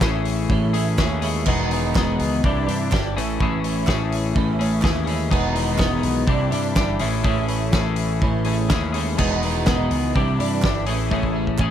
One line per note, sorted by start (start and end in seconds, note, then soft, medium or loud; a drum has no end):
0.01 0.47 A1 medium
0.01 0.97 A2 medium
0.01 0.98 E3 medium
0.01 0.75 A3 medium
0.01 0.74 C#4 loud
0.01 0.51 E4 medium
0.01 0.72 G#4 loud
0.01 kick loud
0.01 snare loud
0.01 clap medium
0.25 open hi-hat medium
0.49 0.95 A1 medium
0.49 0.98 A2 medium
0.49 0.97 E3 medium
0.49 0.74 C#4 loud
0.49 0.74 E4 medium
0.49 kick loud
0.73 0.97 A3 medium
0.73 0.98 C#4 medium
0.73 1.00 E4 medium
0.73 0.99 G#4 medium
0.73 open hi-hat medium
0.98 1.44 D#2 medium
0.98 1.47 E3 medium
0.98 1.23 A3 medium
0.98 1.22 C#4 medium
0.98 1.21 E4 medium
0.98 1.20 G#4 medium
0.98 kick loud
0.98 snare loud
0.98 clap medium
1.21 1.45 G#3 medium
1.21 1.45 A3 medium
1.21 1.45 C#4 medium
1.21 1.48 E4 medium
1.21 1.44 G#4 medium
1.21 open hi-hat medium
1.46 1.92 E1 loud
1.46 1.94 E2 medium
1.46 1.94 B2 loud
1.46 1.95 D#3 medium
1.46 1.96 G#3 loud
1.46 1.96 B3 loud
1.46 1.70 D#4 medium
1.46 1.97 G#4 loud
1.46 kick loud
1.46 crash medium
1.71 1.95 G#3 medium
1.71 1.96 B3 medium
1.71 1.96 D#4 medium
1.71 open hi-hat medium
1.95 2.18 E1 medium
1.95 2.42 E2 medium
1.95 2.42 B2 medium
1.95 2.42 D#3 medium
1.95 2.42 G#3 loud
1.95 2.42 B3 loud
1.95 2.43 D#4 medium
1.95 2.43 G#4 loud
1.95 kick loud
1.95 snare loud
1.95 clap medium
2.20 2.42 C#2 medium
2.20 open hi-hat medium
2.44 2.66 C2 medium
2.44 2.92 C3 medium
2.44 2.90 E3 medium
2.44 2.68 G3 medium
2.44 2.67 D4 loud
2.44 2.68 E4 loud
2.44 2.65 G4 medium
2.44 kick loud
2.67 2.91 G2 medium
2.67 2.91 G3 medium
2.67 2.91 D4 medium
2.67 2.93 E4 medium
2.67 2.92 G4 medium
2.67 open hi-hat medium
2.90 3.15 G1 medium
2.90 3.17 E3 medium
2.90 3.14 G3 medium
2.90 3.14 D4 medium
2.90 3.16 E4 medium
2.90 3.14 G4 medium
2.90 kick loud
2.90 snare loud
2.90 clap medium
3.16 3.39 A1 medium
3.16 3.38 A2 medium
3.16 3.40 E3 medium
3.16 3.40 A3 medium
3.16 3.41 C#4 medium
3.16 3.42 E4 medium
3.16 3.41 G#4 medium
3.16 open hi-hat medium
3.40 3.85 A1 medium
3.40 3.85 A2 medium
3.40 3.86 E3 medium
3.40 3.86 A3 medium
3.40 3.86 C#4 loud
3.40 3.64 E4 medium
3.40 3.87 G#4 loud
3.40 kick loud
3.64 3.88 C#4 medium
3.64 3.90 E4 medium
3.64 open hi-hat medium
3.86 4.34 A1 medium
3.86 4.83 A2 medium
3.86 4.81 E3 medium
3.86 4.60 A3 medium
3.86 4.58 C#4 medium
3.86 4.37 E4 medium
3.86 4.58 G#4 loud
3.86 kick loud
3.86 snare loud
3.86 clap medium
4.12 open hi-hat medium
4.36 4.82 A1 medium
4.36 4.84 A2 medium
4.36 4.83 E3 medium
4.36 4.60 C#4 loud
4.36 4.59 E4 loud
4.36 kick loud
4.59 4.81 A3 medium
4.59 4.82 C#4 medium
4.59 4.85 E4 medium
4.59 4.83 G#4 medium
4.59 open hi-hat medium
4.81 5.30 D#2 medium
4.81 5.30 E3 medium
4.81 5.06 A3 medium
4.81 5.05 C#4 medium
4.81 5.07 E4 medium
4.81 5.03 G#4 medium
4.81 kick loud
4.81 snare loud
4.81 clap medium
5.05 5.30 A3 medium
5.05 5.30 C#4 medium
5.05 5.32 E4 medium
5.05 5.29 G#4 medium
5.05 open hi-hat medium
5.09 5.30 G#3 medium
5.30 5.78 E1 loud
5.30 5.76 E2 medium
5.30 5.77 B2 medium
5.30 5.77 D#3 loud
5.30 5.77 G#3 loud
5.30 5.77 B3 loud
5.30 5.54 D#4 loud
5.30 5.78 G#4 loud
5.30 kick loud
5.30 crash medium
5.55 5.79 G#3 medium
5.55 5.79 B3 medium
5.55 5.80 D#4 medium
5.55 open hi-hat medium
5.77 6.02 E1 medium
5.77 6.25 E2 medium
5.77 6.26 B2 medium
5.77 6.26 D#3 loud
5.77 6.26 G#3 medium
5.77 6.26 B3 loud
5.77 6.27 G#4 loud
5.77 kick loud
5.77 snare loud
5.77 clap medium
5.81 6.28 D#4 medium
6.03 6.27 B1 medium
6.03 open hi-hat medium
6.27 6.51 C2 medium
6.27 6.76 C3 medium
6.27 6.75 E3 medium
6.27 6.52 G3 medium
6.27 6.51 D4 loud
6.27 6.51 E4 medium
6.27 6.50 G4 medium
6.27 kick loud
6.51 6.75 G2 medium
6.51 6.75 G3 medium
6.51 6.75 D4 medium
6.51 6.78 E4 medium
6.51 6.76 G4 medium
6.51 open hi-hat medium
6.75 7.00 G1 medium
6.75 7.01 E3 medium
6.75 6.99 G3 medium
6.75 6.99 D4 medium
6.75 7.00 E4 medium
6.75 6.99 G4 medium
6.75 kick loud
6.75 snare loud
6.75 clap loud
6.99 7.24 A1 medium
6.99 7.22 A2 medium
6.99 7.23 E3 medium
6.99 7.23 A3 medium
6.99 7.24 C#4 medium
6.99 7.25 E4 medium
6.99 7.23 G#4 medium
6.99 open hi-hat medium
7.23 7.71 A1 loud
7.23 7.71 A2 medium
7.23 7.73 E3 medium
7.23 7.72 A3 loud
7.23 7.72 C#4 loud
7.23 7.48 E4 loud
7.23 7.73 G#4 loud
7.23 kick loud
7.48 7.72 C#4 medium
7.48 7.73 E4 medium
7.48 open hi-hat medium
7.72 8.19 A1 medium
7.72 8.69 A2 medium
7.72 8.68 E3 medium
7.72 8.46 A3 medium
7.72 8.45 C#4 medium
7.72 8.23 E4 medium
7.72 8.43 G#4 medium
7.72 kick loud
7.72 snare loud
7.72 clap medium
7.96 open hi-hat medium
8.21 8.68 A1 medium
8.21 8.70 A2 medium
8.21 8.70 E3 medium
8.21 8.46 C#4 medium
8.21 8.46 E4 medium
8.21 kick loud
8.45 8.69 A3 medium
8.45 8.70 C#4 medium
8.45 8.71 E4 medium
8.45 8.71 G#4 medium
8.45 open hi-hat medium
8.69 9.16 D#2 loud
8.69 9.18 E3 medium
8.69 8.94 A3 medium
8.69 8.93 C#4 medium
8.69 8.94 E4 medium
8.69 8.91 G#4 medium
8.69 kick loud
8.69 snare loud
8.69 clap medium
8.92 9.17 A3 medium
8.92 9.17 C#4 medium
8.92 9.20 E4 medium
8.92 9.16 G#4 medium
8.92 open hi-hat medium
8.97 9.18 G#3 medium
9.17 9.65 E1 loud
9.17 9.65 E2 medium
9.17 9.66 B2 medium
9.17 9.66 D#3 medium
9.17 9.66 G#3 loud
9.17 9.67 B3 medium
9.17 9.42 D#4 medium
9.17 9.68 G#4 loud
9.17 kick loud
9.17 crash medium
9.43 9.66 G#3 medium
9.43 9.67 B3 medium
9.43 9.68 D#4 medium
9.43 open hi-hat medium
9.66 9.90 E1 medium
9.66 10.13 E2 medium
9.66 10.13 B2 medium
9.66 10.14 D#3 medium
9.66 10.14 G#3 loud
9.66 10.14 B3 loud
9.66 10.15 D#4 medium
9.66 10.15 G#4 loud
9.66 kick loud
9.66 snare loud
9.66 clap medium
9.91 10.14 C#2 medium
9.91 open hi-hat medium
10.14 10.38 C2 medium
10.14 10.63 C3 medium
10.14 10.64 E3 loud
10.14 10.41 G3 medium
10.14 10.39 D4 loud
10.14 10.38 E4 medium
10.14 10.39 G4 loud
10.14 kick loud
10.38 10.62 G2 medium
10.38 10.63 G3 medium
10.38 10.64 D4 medium
10.38 10.64 E4 medium
10.38 10.65 G4 medium
10.38 open hi-hat medium
10.62 10.88 G1 medium
10.62 10.88 E3 medium
10.62 10.86 G3 medium
10.62 10.87 D4 medium
10.62 10.86 E4 medium
10.62 kick loud
10.62 snare loud
10.62 clap medium
10.66 10.86 G4 medium
10.86 11.11 A1 loud
10.86 11.10 A2 medium
10.86 11.10 E3 medium
10.86 11.11 A3 medium
10.86 11.11 C#4 medium
10.86 11.11 E4 medium
10.86 11.12 G#4 medium
10.86 open hi-hat medium
11.11 11.57 A1 loud
11.11 11.57 A2 loud
11.11 11.58 E3 medium
11.11 11.59 A3 loud
11.11 11.59 C#4 loud
11.11 11.33 E4 loud
11.11 11.60 G#4 loud
11.11 kick loud
11.23 kick medium
11.35 11.59 C#4 medium
11.35 11.60 E4 medium
11.47 kick medium
11.58 11.71 A1 medium
11.58 11.71 A2 medium
11.58 11.71 E3 medium
11.58 11.71 A3 medium
11.58 11.71 C#4 medium
11.58 11.71 E4 medium
11.58 11.71 G#4 loud
11.58 kick medium
11.58 clap medium